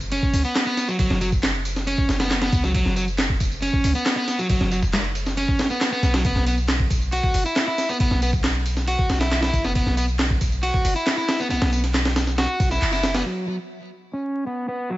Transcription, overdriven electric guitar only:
0.12 0.44 C#4 medium
0.45 0.65 B3 medium
0.66 0.87 B3 loud
0.88 0.96 F#3 medium
0.99 1.20 F#3 medium
1.21 1.29 F#3 medium
1.87 2.19 C#4 medium
2.20 2.41 B3 medium
2.42 2.63 B3 loud
2.64 2.71 F#3 medium
2.75 2.95 F#3 medium
2.96 3.04 F#3 medium
3.62 3.94 C#4 medium
3.95 4.16 B3 medium
4.17 4.38 B3 loud
4.39 4.46 F#3 medium
4.50 4.71 F#3 medium
4.72 4.79 F#3 medium
5.37 5.69 C#4 medium
5.70 5.91 B3 medium
5.92 6.13 B3 loud
6.14 6.22 F#3 medium
6.25 6.46 B3 medium
6.47 6.55 B3 medium
7.13 7.44 F#4 medium
7.46 7.66 E4 medium
7.67 7.88 E4 loud
7.89 7.97 B3 medium
8.00 8.21 B3 medium
8.22 8.30 B3 medium
8.88 9.19 F#4 medium
9.21 9.41 E4 medium
9.42 9.63 E4 loud
9.64 9.72 B3 medium
9.75 9.96 B3 medium
9.97 10.05 B3 medium
10.63 10.95 F#4 medium
10.96 11.17 E4 medium
11.18 11.38 E4 loud
11.40 11.47 B3 medium
11.50 11.71 B3 medium
11.73 11.80 B3 medium
12.38 12.70 F#4 medium
12.71 12.91 E4 medium
12.93 13.14 E4 loud
13.15 13.22 B3 medium
13.26 13.46 F#3 medium
13.47 13.55 F#3 medium
14.13 14.45 C#4 medium
14.46 14.67 B3 medium
14.68 14.89 B3 medium
14.90 14.97 F#3 medium

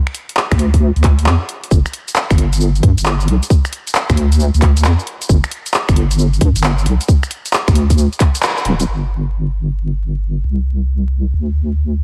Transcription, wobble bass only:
0.51 0.92 D2 medium
0.96 1.28 D2 medium
1.26 1.38 F2 medium
1.71 1.83 G1 loud
2.31 2.81 G1 medium
2.83 2.95 G2 medium
2.98 3.29 G1 loud
3.28 3.40 C2 medium
4.10 4.50 D2 medium
4.54 4.86 D2 medium
4.85 4.97 F2 medium
5.29 5.41 G1 medium
5.89 6.39 G1 medium
6.41 6.53 G2 medium
6.56 6.88 G1 loud
6.86 6.98 C2 medium
7.68 8.08 D2 medium
8.65 8.85 D1 medium
8.88 10.43 G1 medium
10.44 11.32 C2 medium
11.34 12.04 D2 medium

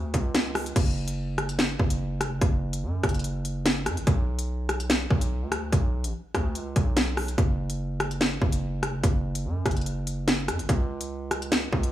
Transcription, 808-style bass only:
0.00 0.13 D2 loud
0.14 0.73 C#2 loud
0.76 1.75 F#1 loud
1.79 2.22 F#1 loud
2.21 2.33 F1 loud
2.32 2.41 F#1 loud
2.41 2.84 F#1 loud
2.83 3.02 F#2 loud
3.04 3.88 F#1 loud
3.86 3.99 F#2 loud
3.97 4.06 F#1 loud
4.07 5.06 B1 loud
5.11 5.44 B1 loud
5.42 5.71 D2 loud
5.73 6.06 B1 loud
6.04 6.13 A1 loud
6.35 6.57 D2 loud
6.55 6.75 C#2 loud
6.76 7.36 B1 loud
7.38 8.37 F#1 loud
8.42 8.84 F#1 loud
8.83 8.95 F1 loud
8.94 9.03 F#1 loud
9.04 9.46 F#1 loud
9.45 9.65 F#2 loud
9.66 10.50 F#1 loud
10.48 10.61 F#2 loud
10.59 10.69 F#1 loud
10.69 11.68 C#2 loud
11.73 11.92 C#2 loud

